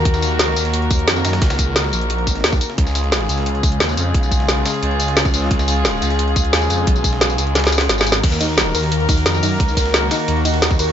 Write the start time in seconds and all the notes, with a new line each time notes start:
Already playing: D#3 A#3 F#4 A#4
0.05 D#2, kick, closed hi-hat
0.14 snare, tambourine
0.22 snare, closed hi-hat, tambourine
0.31 closed hi-hat
0.39 snare, closed hi-hat
0.48 snare
0.56 D#2, snare, closed hi-hat, tambourine
0.65 snare, closed hi-hat
0.74 closed hi-hat
0.82 closed hi-hat
0.91 D#2, kick, closed hi-hat, tambourine
0.99 closed hi-hat
1.08 F2, snare, closed hi-hat, open hi-hat
1.16 tambourine
1.25 F#2, snare, closed hi-hat, tambourine
1.33 snare, closed hi-hat
1.42 C#2, kick, snare, closed hi-hat
1.50 snare, closed hi-hat, tambourine
1.59 kick, closed hi-hat, tambourine
1.76 snare, closed hi-hat
1.84 snare
1.93 A#1, closed hi-hat, tambourine
2.01 closed hi-hat
2.10 closed hi-hat
2.18 closed hi-hat
2.27 kick, closed hi-hat, tambourine
2.35 snare, closed hi-hat
2.44 D#2, snare, closed hi-hat
2.52 kick, snare, tambourine
2.61 closed hi-hat, tambourine
2.70 snare
2.78 C#2 C#3 G#3 F4 G#4, kick, closed hi-hat
2.87 snare, tambourine
2.95 snare, closed hi-hat, tambourine
3.04 closed hi-hat
3.12 snare, closed hi-hat
3.21 snare
3.29 C#2, closed hi-hat, tambourine
3.38 snare, closed hi-hat
3.46 closed hi-hat
3.55 closed hi-hat
3.63 C#2, kick, closed hi-hat, tambourine
3.72 closed hi-hat
3.80 D#2, snare, closed hi-hat, open hi-hat
3.89 tambourine
3.97 F2, snare, closed hi-hat, tambourine
4.14 B1, kick, closed hi-hat
4.23 tambourine
4.31 kick, closed hi-hat, tambourine
4.40 snare
4.49 snare, closed hi-hat
4.57 closed hi-hat
4.66 snare, closed hi-hat, tambourine
4.74 snare, closed hi-hat
4.83 C#2, closed hi-hat
4.91 closed hi-hat
5.00 closed hi-hat, tambourine
5.08 snare, closed hi-hat
5.17 snare, closed hi-hat
5.25 kick, snare, tambourine
5.34 C#2, closed hi-hat, tambourine
5.42 snare
5.51 C#2, kick, closed hi-hat
5.59 snare, tambourine
5.68 snare, closed hi-hat, tambourine
5.76 closed hi-hat
5.85 snare, closed hi-hat
5.93 snare
6.02 C#2, snare, closed hi-hat, tambourine
6.10 snare, closed hi-hat
6.19 closed hi-hat
6.28 closed hi-hat
6.36 C#2, kick, closed hi-hat, tambourine
6.45 closed hi-hat
6.53 D#2, snare, closed hi-hat, open hi-hat
6.62 tambourine
6.70 F2, snare, closed hi-hat, tambourine
6.87 B1, kick, closed hi-hat
6.96 tambourine
7.04 kick, closed hi-hat, tambourine
7.13 snare
7.21 snare, closed hi-hat
7.30 closed hi-hat, tambourine
7.38 C#2, closed hi-hat, tambourine
7.47 closed hi-hat
7.55 snare, closed hi-hat
7.60 snare, closed hi-hat
7.64 snare, closed hi-hat
7.67 snare
7.72 snare, closed hi-hat, tambourine
7.78 snare
7.81 snare, closed hi-hat
7.89 G#1, snare, closed hi-hat
7.98 snare, closed hi-hat, tambourine
8.01 snare
8.06 closed hi-hat, tambourine
8.12 snare
8.15 snare
8.23 D#2 D#3 A#3 F#4 A#4, kick, closed hi-hat, crash
8.32 snare, tambourine
8.41 D#4, snare, closed hi-hat, ride, tambourine
8.49 closed hi-hat
8.58 snare, closed hi-hat
8.66 snare
8.75 D#2 A#4, closed hi-hat, ride, tambourine
8.83 snare, closed hi-hat
8.92 closed hi-hat
9.00 closed hi-hat
9.09 D#2 D#4, kick, closed hi-hat, ride, tambourine
9.17 closed hi-hat
9.26 F2, snare, closed hi-hat, open hi-hat
9.34 tambourine
9.43 F#2 D#4, snare, closed hi-hat, ride, tambourine
9.60 C#2, kick, closed hi-hat
9.68 tambourine
9.77 A#4, kick, closed hi-hat, ride, tambourine
9.86 snare
9.94 snare, closed hi-hat
10.03 closed hi-hat
10.11 D#4, snare, closed hi-hat, ride, tambourine
10.20 snare, closed hi-hat
10.28 D#2, closed hi-hat
10.37 closed hi-hat
10.45 D#4, closed hi-hat, ride, tambourine
10.54 snare, closed hi-hat
10.62 snare, closed hi-hat
10.71 kick, snare, tambourine
10.79 D#2 A#4, closed hi-hat, ride, tambourine
10.88 snare